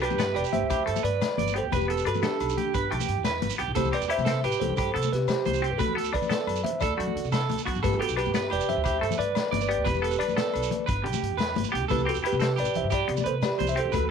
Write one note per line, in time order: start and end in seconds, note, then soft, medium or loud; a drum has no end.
0.01 0.16 D4 medium
0.01 0.18 G4 medium
0.01 0.35 G4 medium
0.01 0.34 B4 medium
0.01 closed hi-hat soft
0.01 low agogo medium
0.10 0.32 G2 medium
0.10 high conga medium
0.10 low conga medium
0.10 shekere soft
0.18 0.47 B3 medium
0.18 0.35 B4 medium
0.18 snare medium
0.18 closed hi-hat medium
0.18 shekere medium
0.35 0.43 E1 medium
0.35 0.68 G4 medium
0.35 0.45 B4 medium
0.35 0.44 D5 medium
0.35 closed hi-hat soft
0.35 low agogo medium
0.35 shekere soft
0.44 shekere medium
0.53 0.60 G1 medium
0.53 1.01 C5 medium
0.53 1.00 E5 medium
0.53 closed hi-hat soft
0.53 high conga medium
0.53 low conga medium
0.62 0.83 D2 medium
0.70 0.86 G4 medium
0.70 kick medium
0.70 closed hi-hat medium
0.70 low agogo medium
0.70 shekere medium
0.80 low conga soft
0.86 1.02 G2 medium
0.86 1.14 A3 medium
0.86 1.03 A4 medium
0.86 closed hi-hat soft
0.86 low conga soft
0.96 high conga medium
0.96 low conga medium
0.96 shekere medium
1.03 1.18 G2 medium
1.03 1.36 B4 medium
1.03 1.52 B4 medium
1.03 1.57 D5 medium
1.03 closed hi-hat soft
1.03 low conga soft
1.21 snare medium
1.21 closed hi-hat medium
1.21 low agogo medium
1.21 shekere medium
1.38 1.59 G1 medium
1.38 1.54 D5 medium
1.38 closed hi-hat medium
1.38 high conga medium
1.38 low conga medium
1.38 shekere soft
1.47 shekere medium
1.54 1.68 B3 medium
1.54 1.71 G4 medium
1.54 1.65 C5 medium
1.54 closed hi-hat soft
1.58 1.65 A4 medium
1.63 1.71 D2 medium
1.72 2.01 E1 medium
1.72 1.88 B4 medium
1.72 2.08 B4 medium
1.72 kick medium
1.72 closed hi-hat medium
1.72 high conga medium
1.72 low conga soft
1.72 low agogo medium
1.72 shekere medium
1.76 2.06 G4 medium
1.81 low conga medium
1.81 shekere soft
1.88 2.02 B3 medium
1.88 2.06 A4 medium
1.88 closed hi-hat soft
1.98 shekere medium
2.05 2.20 G2 medium
2.05 2.19 D4 medium
2.05 2.23 F#4 medium
2.05 2.24 A4 medium
2.05 2.23 B4 medium
2.05 closed hi-hat soft
2.05 low agogo medium
2.14 high conga medium
2.14 low conga medium
2.14 shekere soft
2.22 2.50 B3 medium
2.22 2.87 D4 soft
2.22 2.86 G4 medium
2.22 2.56 A4 medium
2.22 snare medium
2.22 closed hi-hat medium
2.22 shekere medium
2.40 2.54 B1 medium
2.40 closed hi-hat soft
2.40 low agogo medium
2.40 shekere soft
2.49 shekere medium
2.57 2.73 G4 medium
2.57 closed hi-hat soft
2.57 high conga medium
2.57 low conga medium
2.57 shekere soft
2.74 2.89 G1 medium
2.74 2.90 B4 medium
2.74 kick medium
2.74 closed hi-hat medium
2.74 low agogo medium
2.74 shekere medium
2.84 low conga soft
2.91 2.98 B1 medium
2.91 3.18 A3 medium
2.91 3.23 G4 medium
2.91 closed hi-hat soft
2.91 low conga soft
3.00 high conga medium
3.00 low conga medium
3.00 shekere medium
3.08 3.15 G2 medium
3.08 closed hi-hat soft
3.08 low conga soft
3.17 3.38 E2 medium
3.24 3.57 B4 medium
3.24 snare medium
3.24 closed hi-hat medium
3.24 low agogo medium
3.24 shekere medium
3.42 3.49 G1 medium
3.42 closed hi-hat soft
3.42 high conga medium
3.42 low conga medium
3.42 shekere soft
3.50 shekere medium
3.58 3.67 B1 medium
3.58 3.72 B3 medium
3.58 3.75 G4 medium
3.58 closed hi-hat soft
3.68 3.75 B1 medium
3.75 3.90 C2 loud
3.75 3.92 G4 medium
3.75 3.91 A4 medium
3.75 3.94 C5 medium
3.75 kick medium
3.75 closed hi-hat medium
3.75 high conga medium
3.75 low conga soft
3.75 low agogo medium
3.75 shekere medium
3.84 low conga medium
3.84 shekere soft
3.92 4.06 C4 medium
3.92 4.07 G4 medium
3.92 4.10 B4 medium
3.92 4.11 D5 medium
3.92 closed hi-hat soft
4.01 4.15 E2 medium
4.01 shekere medium
4.08 4.23 E4 medium
4.08 4.25 G4 medium
4.08 4.42 C5 medium
4.08 4.42 E5 loud
4.08 closed hi-hat soft
4.08 low agogo medium
4.18 4.39 C3 medium
4.18 high conga medium
4.18 low conga medium
4.18 shekere soft
4.25 4.54 C4 medium
4.25 4.42 A4 medium
4.25 snare medium
4.25 closed hi-hat medium
4.25 shekere medium
4.43 4.51 A1 medium
4.43 4.76 G4 medium
4.43 4.61 G4 medium
4.43 4.60 B4 medium
4.43 closed hi-hat soft
4.43 low agogo medium
4.52 shekere medium
4.60 4.68 C2 medium
4.60 5.09 A4 medium
4.60 5.08 C5 medium
4.60 closed hi-hat soft
4.60 high conga medium
4.60 low conga medium
4.60 shekere soft
4.70 4.91 G2 medium
4.77 4.93 G4 medium
4.77 kick medium
4.77 closed hi-hat medium
4.77 low agogo medium
4.77 shekere medium
4.87 low conga soft
4.94 5.09 C3 medium
4.94 5.21 B3 medium
4.94 5.11 A4 medium
4.94 closed hi-hat soft
4.94 low conga soft
5.02 high conga medium
5.02 shekere medium
5.12 5.26 C3 medium
5.12 5.28 G4 medium
5.12 5.28 B4 medium
5.12 snare soft
5.12 closed hi-hat soft
5.28 5.70 G4 medium
5.28 5.69 C5 medium
5.28 snare medium
5.28 closed hi-hat medium
5.28 low agogo medium
5.28 shekere medium
5.45 5.67 C2 medium
5.45 5.62 C5 medium
5.45 closed hi-hat soft
5.45 high conga medium
5.45 low conga medium
5.45 shekere soft
5.54 shekere medium
5.62 5.76 C4 medium
5.62 5.78 G4 medium
5.62 closed hi-hat soft
5.71 5.78 G2 medium
5.71 5.79 B4 medium
5.78 6.09 D2 medium
5.78 6.11 F#4 medium
5.78 6.14 A4 medium
5.78 5.95 B4 medium
5.78 kick medium
5.78 closed hi-hat medium
5.78 high conga medium
5.78 low agogo medium
5.78 shekere medium
5.89 low conga medium
5.95 6.09 B3 medium
5.95 6.12 A4 medium
5.95 closed hi-hat soft
6.04 shekere medium
6.13 6.28 D3 medium
6.13 6.26 D4 medium
6.13 6.62 B4 medium
6.13 6.61 D5 medium
6.13 kick medium
6.13 closed hi-hat soft
6.13 low agogo medium
6.22 high conga medium
6.22 low conga medium
6.22 shekere soft
6.29 6.57 B3 medium
6.29 6.62 A4 medium
6.29 snare medium
6.29 closed hi-hat medium
6.29 shekere medium
6.47 6.61 F#2 medium
6.47 closed hi-hat soft
6.47 low agogo medium
6.56 shekere medium
6.64 6.81 C5 medium
6.64 6.80 E5 medium
6.64 muted clean electric guitar stroke medium
6.64 closed hi-hat medium
6.64 high conga medium
6.64 low conga medium
6.74 low conga soft
6.80 6.96 D2 medium
6.80 6.97 A4 medium
6.80 7.30 A4 medium
6.80 7.28 D5 medium
6.80 kick medium
6.80 closed hi-hat medium
6.80 low agogo medium
6.80 shekere medium
6.97 7.06 F#2 medium
6.97 7.25 A3 medium
6.97 7.30 F#4 medium
6.97 closed hi-hat soft
6.97 low conga soft
7.07 high conga medium
7.07 low conga medium
7.16 7.22 D3 medium
7.16 closed hi-hat soft
7.24 7.45 C3 medium
7.24 low conga soft
7.24 shekere soft
7.32 7.64 A4 medium
7.32 snare medium
7.32 closed hi-hat medium
7.32 low conga soft
7.32 low agogo medium
7.32 shekere medium
7.40 shekere soft
7.49 7.56 D2 medium
7.49 closed hi-hat medium
7.49 high conga medium
7.49 low conga medium
7.49 shekere soft
7.58 low conga soft
7.58 shekere medium
7.65 7.77 F#2 medium
7.65 7.80 B3 medium
7.65 7.82 F#4 medium
7.65 kick medium
7.65 closed hi-hat soft
7.75 7.82 A1 medium
7.75 low conga soft
7.75 shekere soft
7.83 7.98 G1 medium
7.83 8.00 G4 medium
7.83 7.99 A4 medium
7.83 7.99 B4 medium
7.83 kick medium
7.83 closed hi-hat medium
7.83 high conga medium
7.83 low conga soft
7.83 low agogo medium
7.83 shekere medium
7.92 low conga medium
7.92 shekere soft
8.00 8.14 B3 medium
8.00 8.17 F#4 medium
8.00 8.16 G4 medium
8.00 8.16 A4 medium
8.00 closed hi-hat soft
8.08 8.23 B1 medium
8.08 shekere medium
8.16 8.30 D4 medium
8.16 8.33 G4 medium
8.16 8.49 G4 medium
8.16 8.49 B4 medium
8.16 closed hi-hat soft
8.16 low agogo medium
8.25 8.47 G2 medium
8.25 high conga medium
8.25 shekere soft
8.34 8.62 B3 medium
8.34 8.50 B4 medium
8.34 snare medium
8.34 closed hi-hat medium
8.34 shekere medium
8.50 8.59 E1 medium
8.50 8.83 G4 medium
8.50 8.68 B4 medium
8.50 8.67 D5 medium
8.50 closed hi-hat soft
8.50 low agogo medium
8.50 shekere soft
8.60 shekere medium
8.68 8.75 G1 medium
8.68 9.16 C5 medium
8.68 9.21 E5 medium
8.68 closed hi-hat soft
8.68 low conga medium
8.68 shekere soft
8.77 8.98 D2 medium
8.84 9.01 G4 medium
8.84 kick medium
8.84 closed hi-hat medium
8.84 low agogo medium
8.84 shekere medium
8.94 low conga soft
9.01 9.16 G2 medium
9.01 9.29 A3 medium
9.01 9.17 A4 medium
9.01 closed hi-hat soft
9.01 low conga soft
9.11 high conga medium
9.11 low conga medium
9.11 shekere medium
9.18 9.33 G2 medium
9.18 9.50 B4 medium
9.18 9.59 B4 medium
9.18 9.60 D5 loud
9.18 closed hi-hat soft
9.18 low conga soft
9.35 snare medium
9.35 closed hi-hat medium
9.35 low agogo medium
9.35 shekere medium
9.51 9.74 G1 medium
9.51 9.68 D5 medium
9.51 closed hi-hat medium
9.51 high conga medium
9.51 low conga medium
9.51 shekere soft
9.61 9.68 B4 medium
9.61 9.68 D5 medium
9.61 shekere medium
9.68 9.83 B3 medium
9.68 9.85 G4 medium
9.68 9.83 B4 medium
9.68 9.87 D5 medium
9.68 closed hi-hat soft
9.78 9.85 D2 medium
9.84 10.15 E1 medium
9.84 10.10 G4 medium
9.84 10.10 B4 medium
9.84 10.02 B4 medium
9.84 kick medium
9.84 closed hi-hat medium
9.84 high conga medium
9.84 low conga soft
9.84 low agogo medium
9.84 shekere medium
9.95 low conga medium
9.95 shekere soft
10.02 10.16 B3 medium
10.02 10.19 A4 medium
10.02 closed hi-hat soft
10.11 10.20 G4 medium
10.11 10.19 B4 medium
10.11 shekere medium
10.19 10.35 G2 medium
10.19 10.34 D4 medium
10.19 10.36 B4 medium
10.19 10.36 D5 medium
10.19 closed hi-hat soft
10.19 low agogo medium
10.28 high conga medium
10.28 low conga medium
10.28 shekere soft
10.36 10.64 B3 medium
10.36 10.69 A4 medium
10.36 10.85 B4 medium
10.36 10.84 D5 medium
10.36 snare medium
10.36 closed hi-hat medium
10.36 shekere medium
10.54 10.69 B1 medium
10.54 closed hi-hat soft
10.54 low agogo medium
10.54 shekere soft
10.63 shekere medium
10.71 closed hi-hat soft
10.71 high conga medium
10.71 low conga medium
10.86 11.03 G1 medium
10.86 11.03 B4 medium
10.86 kick medium
10.86 closed hi-hat medium
10.86 low agogo medium
10.86 shekere medium
10.97 low conga soft
11.04 11.12 B1 medium
11.04 11.32 D3 medium
11.04 11.37 G4 medium
11.04 closed hi-hat soft
11.04 low conga soft
11.13 high conga medium
11.13 low conga medium
11.13 shekere medium
11.22 11.29 G2 medium
11.22 closed hi-hat soft
11.31 11.52 E2 medium
11.37 11.70 B4 medium
11.37 snare medium
11.37 closed hi-hat medium
11.37 low agogo medium
11.37 shekere medium
11.56 11.63 G1 medium
11.56 closed hi-hat soft
11.56 high conga medium
11.56 low conga medium
11.56 shekere soft
11.64 shekere medium
11.72 11.82 B1 medium
11.72 11.86 B3 medium
11.72 11.88 G4 medium
11.72 closed hi-hat soft
11.82 11.89 D2 medium
11.88 12.05 C2 loud
11.88 12.07 G4 medium
11.88 12.05 A4 medium
11.88 12.08 B4 medium
11.88 kick medium
11.88 closed hi-hat medium
11.88 high conga medium
11.88 low conga soft
11.88 low agogo medium
11.88 shekere medium
11.98 low conga medium
11.98 shekere soft
12.05 12.20 C4 medium
12.05 12.21 G4 medium
12.05 12.16 A4 medium
12.05 closed hi-hat soft
12.10 12.17 F#4 medium
12.15 12.30 E2 medium
12.15 shekere medium
12.23 12.37 E4 medium
12.23 12.39 G4 medium
12.23 closed hi-hat soft
12.23 low agogo medium
12.27 12.57 G4 medium
12.27 12.57 B4 medium
12.32 12.54 C3 medium
12.32 high conga medium
12.32 low conga medium
12.32 shekere soft
12.40 12.68 C4 medium
12.40 12.56 A4 medium
12.40 snare medium
12.40 closed hi-hat medium
12.40 shekere medium
12.56 12.65 A1 medium
12.56 12.89 G4 medium
12.56 12.76 D5 medium
12.56 closed hi-hat soft
12.56 low agogo medium
12.56 shekere soft
12.61 12.76 B4 medium
12.61 shekere medium
12.74 12.82 C2 medium
12.74 12.92 E5 medium
12.74 closed hi-hat soft
12.74 low conga medium
12.74 shekere soft
12.78 12.92 C5 medium
12.84 13.05 G2 medium
12.90 13.07 G4 medium
12.90 13.19 D5 medium
12.90 kick medium
12.90 closed hi-hat medium
12.90 low agogo medium
12.90 shekere medium
12.95 13.21 G4 medium
13.01 low conga soft
13.08 13.23 C3 medium
13.08 13.35 B3 medium
13.08 closed hi-hat soft
13.08 low conga soft
13.17 13.25 D5 medium
13.17 high conga medium
13.17 low conga medium
13.17 shekere medium
13.24 13.40 C3 medium
13.24 13.57 B4 medium
13.24 13.34 C5 medium
13.24 closed hi-hat medium
13.24 low conga soft
13.28 13.35 A4 medium
13.42 13.67 G4 medium
13.42 13.66 D5 medium
13.42 snare medium
13.42 closed hi-hat medium
13.42 low agogo medium
13.42 shekere medium
13.59 13.81 C2 medium
13.59 13.75 C5 medium
13.59 closed hi-hat medium
13.59 high conga medium
13.59 low conga medium
13.59 shekere soft
13.67 13.77 E5 medium
13.67 shekere medium
13.71 13.77 C5 medium
13.75 13.90 C4 medium
13.75 13.92 G4 medium
13.75 13.93 C5 medium
13.75 closed hi-hat soft
13.80 13.93 A4 medium
13.85 13.92 C#2 medium
13.92 14.11 D2 medium
13.92 14.11 A4 medium
13.92 14.08 B4 medium
13.92 kick medium
13.92 closed hi-hat medium
13.92 high conga medium
13.92 low conga soft
13.92 low agogo medium
13.92 shekere medium
13.96 14.11 F#4 medium
14.02 low conga medium